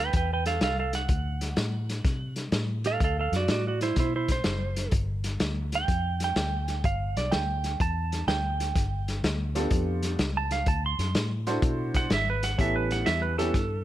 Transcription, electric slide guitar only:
0.00 B4 G5
0.16 B4 G5
0.33 B4 G5
0.47 A4 F5
0.63 A4 F5
0.79 A4 F5
0.95 F#5
2.86 A4 F5
3.04 A4 F5
3.19 A4 F5
3.36 F#4 D5
3.51 F#4 D5
3.67 F#4 D5
3.82 E4 C5
3.99 E4 C5
4.16 E4 C5
4.32 C5
5.75 G5
6.24 G5
6.85 F5
7.17 D5
7.32 G5
7.81 A5
8.28 G5
10.37 A5
10.52 F5
10.68 A5
10.86 C6
11.96 F#5
12.14 E5
12.30 B4
12.44 F#5
12.61 E5
12.76 B4
12.92 F#5
13.06 E5
13.22 B4
13.38 A4

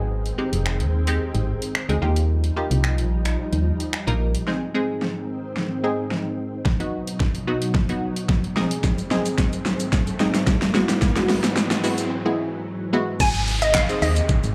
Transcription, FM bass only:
Already playing: G#1
0.53 F1
0.80 D#2
1.35 G#1
1.89 D2
2.02 D#2
2.71 C2
2.98 A#1
3.53 D#2
4.07 A#1
13.20 G#1
14.02 D#2
14.44 G#1

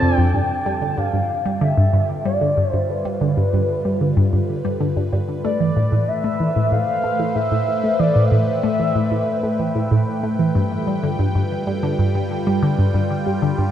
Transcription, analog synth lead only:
Already playing: A5
0.15 G5
0.34 G5
0.98 F5
1.62 E5
2.26 D5
2.71 C5
2.89 B4
5.44 D5
6.08 E5
6.71 F5
7.35 E5
7.99 D5
8.25 F5
8.31 E5

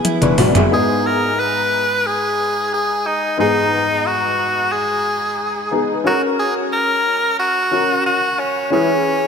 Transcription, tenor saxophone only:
0.74 G#4
1.07 A#4
1.40 B4
2.07 G#4
2.74 G#4
3.07 D#4
3.40 D#4
4.07 F#4
4.72 G#4
6.07 F#4
6.40 G#4
6.73 A#4
7.39 F#4
8.06 F#4
8.39 C#4
8.73 C#4

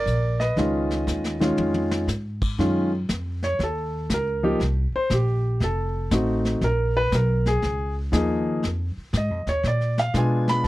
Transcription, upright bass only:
0.06 A#1
0.56 C#2
1.07 D#2
1.57 F2
2.08 G#2
2.58 F#2
3.09 F2
3.59 D#2
4.10 C#2
4.60 C2
4.92 muted upright bass stroke
5.10 A#1
5.60 F1
6.11 A1
6.61 A#1
7.12 B1
7.62 C#2
8.13 D#2
8.63 F2
8.97 muted upright bass stroke
9.13 G#2
9.30 F2
9.47 D#2
9.63 A#2
10.14 B2
10.64 D#2

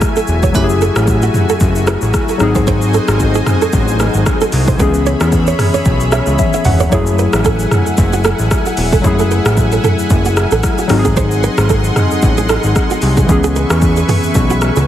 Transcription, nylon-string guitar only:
0.17 A4
0.43 C#5
0.55 B4
0.82 A4
1.23 F#4
1.50 A4
1.88 B4
2.29 A4
2.56 C5
2.68 C5
2.94 A4
3.35 G#4
3.62 A4
4.00 B4
4.42 A4
4.68 C5
4.80 B4
5.07 C#5
5.48 C#5
5.74 C#5
6.13 E5
6.54 E5
6.80 C#5
6.92 C#5
7.19 B4
7.46 A4
8.13 F#4
8.25 A4
8.66 F#4
8.93 A4
9.19 A4
9.31 B4
9.73 A4
9.84 A4
10.26 F#4
10.52 A4
10.79 F#4
11.05 G#4
11.17 C5
11.44 B4
11.70 A4
12.38 G#4
12.50 A4
12.91 F#4
13.18 G#4
13.44 G#4
13.56 B4
13.97 G#4
14.09 G#4
14.50 F#4
14.77 G#4

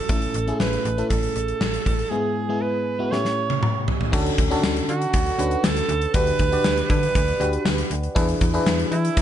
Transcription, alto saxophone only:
Already playing: A4
0.60 B4
1.10 A4
2.10 G#4
2.62 B4
3.12 C#5
4.90 F#4
5.65 A4
6.14 B4
6.91 B4
8.92 E4

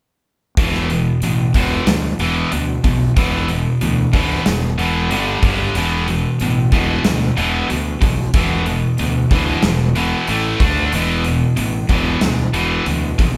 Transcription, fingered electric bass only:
0.57 E1
1.22 A1
1.55 E1
1.86 D2
2.19 E1
2.53 D2
2.84 B1
3.17 E1
3.82 D2
4.13 D2
4.47 E1
5.11 G1
5.42 G1
5.75 E1
6.41 A1
6.72 E1
7.05 D2
7.38 E1
7.71 D2
8.02 B1
8.34 E1
9.00 D2
9.31 D2
9.64 E1
10.28 A1
10.61 D2
10.93 E1
11.58 A1
11.89 E1
12.22 D2
12.54 E1
12.86 D2
13.19 B1

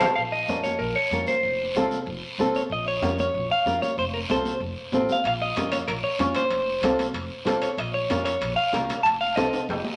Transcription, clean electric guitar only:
Already playing: A5
0.15 F5
0.32 D#5
0.63 C#5
0.79 A#4
0.96 C#5
1.28 C5
2.56 C#5
2.72 D#5
2.88 C#5
3.20 C#5
3.51 F5
3.82 C#5
3.99 C5
4.14 A#4
4.31 C5
5.12 F5
5.27 F5
5.42 D#5
5.72 C#5
5.88 A#4
6.04 C#5
6.36 C5
7.62 C#5
7.79 D#5
7.94 C#5
8.25 C#5
8.56 F5
9.03 A5
9.21 F5
9.36 D#5

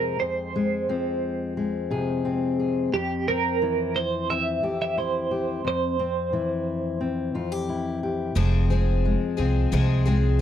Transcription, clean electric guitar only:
Already playing: A#4
0.20 C5
2.94 G4
3.28 A#4
3.96 C5
4.30 E5
4.82 E5
4.98 C5
5.68 C5

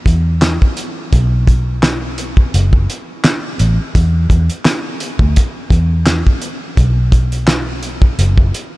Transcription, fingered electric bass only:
0.06 E2
1.13 B1
2.54 F#1
3.60 A1
3.95 E2
4.30 E2
5.19 D2
5.71 E2
6.78 B1
8.19 F#1

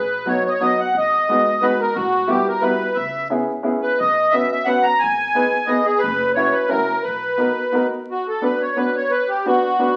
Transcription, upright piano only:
0.25 F#3 B3 D#4 F#4
0.60 F#3 B3 D#4 F#4
1.29 G#3 B3 D#4 F#4
1.61 G#3 B3 D#4 F#4
2.27 G3 B3 E4 F#4
2.61 G3 B3 E4 F#4
3.30 B3 C#4 E4 G#4
3.63 B3 C#4 E4 G#4
4.33 B3 C#4 F#4 B4
4.66 B3 C#4 F#4 B4
5.35 B3 D#4 G#4 B4
5.67 B3 D#4 G#4 B4
6.36 C#4 E4 F#4 B4
6.69 C#4 E4 F#4 A#4
7.38 B3 D#4 F#4 A#4
7.72 B3 D#4 F#4 A#4
8.41 B3 D4 F#4 B4
8.76 B3 D4 F#4 B4
9.46 B3 D4 F#4 B4
9.79 B3 D4 F#4 B4

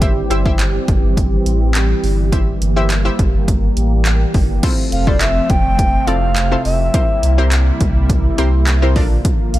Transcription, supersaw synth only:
Already playing: G3 G4
0.02 E3 C4
2.32 A#3
4.63 C3 F3 A3 C4
6.94 G3 A#3 E4
8.96 D3 F3 F4

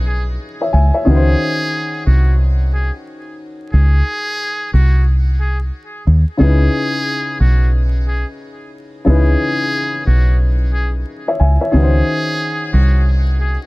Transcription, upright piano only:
Already playing: C#3 C#4 D#4 E4 B4
0.61 C#5 E5
0.73 E5 G#5
0.94 C#5 E5
1.05 D#3 C#4 D#4 F#4
1.09 B4
1.16 C5
6.37 C#3 C#4 D#4 E4
6.42 B4
9.05 C#3 C#4 D#4 E4
9.09 B4
11.28 C#5 E5
11.40 E5 G#5
11.61 C#5 E5
11.72 D#3 C#4 D#4 F#4
11.76 B4
11.83 C5

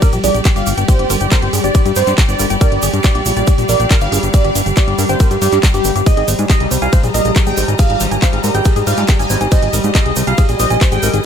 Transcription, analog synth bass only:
0.13 A#1
0.24 A#1
0.34 A#1
0.56 G1
0.67 G1
0.78 G1
0.99 G1
1.10 G1
1.21 G1
1.42 G1
1.53 G2
1.64 G1
1.86 G2
1.96 G2
2.07 G2
2.29 G1
2.40 G1
2.50 G1
2.72 G1
2.83 G1
2.93 G2
3.15 A#1
3.26 A#1
3.37 A#1
3.58 A#1
3.69 A#1
3.80 A#1
4.01 G1
4.12 G1
4.23 G1
4.45 G1
4.55 G1
4.66 G1
4.88 G1
4.99 G2
5.09 G1
5.31 G2
5.42 G2
5.52 G2
5.74 G1
5.85 G1
5.96 G1
6.17 G#1
6.28 G#1
6.39 G#2
6.60 C2
6.71 C2
6.82 C2
7.04 A#1
7.14 A#1
7.25 A#1
7.47 G#1
7.57 G#1
7.68 G#1
7.90 G#1
8.01 G#1
8.11 G#1
8.33 G#1
8.44 G#2
8.55 G#1
8.76 G#2
8.87 G#2
8.98 G#2
9.19 G#1
9.30 G#1
9.41 G#1
9.63 G#1
9.73 G#1
9.84 G#2
10.06 C2
10.16 C2
10.27 C2
10.49 A#1
10.60 A#1
10.70 A#1
10.92 G#1
11.03 G#1
11.14 G#1

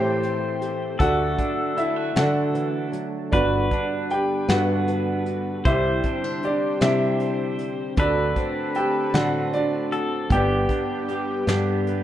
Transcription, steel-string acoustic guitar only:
Already playing: A2 E3 C4 G4
0.23 C5
0.61 G4
1.00 D3
1.39 D4
1.77 F#4
2.15 D3
2.54 E3
2.92 F#3
3.31 G2
3.72 D4
4.49 D3
4.89 B4
5.28 F#4
5.66 C3
6.05 C4
6.24 D4
6.44 G4
6.81 G3
7.20 C5
7.58 G4
7.96 D3
8.36 C4
9.13 A2
9.91 F#4
10.30 G2
10.69 D4
11.10 G4
11.48 D3
11.88 B4

